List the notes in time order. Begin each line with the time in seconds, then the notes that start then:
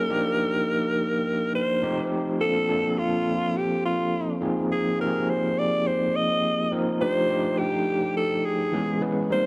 Already playing: F#3 A#3 C#4 D#4 G#4 A#4
0.10 F3 A#3 D4 D#4 G4
1.55 C5
1.82 F3 A3 C4 D#4 G4
2.39 F3 A#3 C4 D4 A4
2.68 F3 A#3 C4 D4 A4
2.98 F4
3.57 G4
3.85 F4
4.41 F3 A#3 C4 D#4 G#4
4.72 G#4
4.99 F3 A#3 C4 D#4 G4 A#4
5.07 G#4
5.29 C5
5.58 D5
5.87 C5
6.16 D#5
6.71 F3 A#3 C4 D#4 A#4
7.00 F3 A3 D4 D#4 G4 C5
7.29 F3 A3 D4 D#4 G4
7.58 G4
8.17 A4
8.45 G#4
8.72 E3 G#3 B3 C#4 G#4
9.01 E3 G#3 B3 C#4 B4
9.30 G3 A#3 C4 D#4 A#4 C5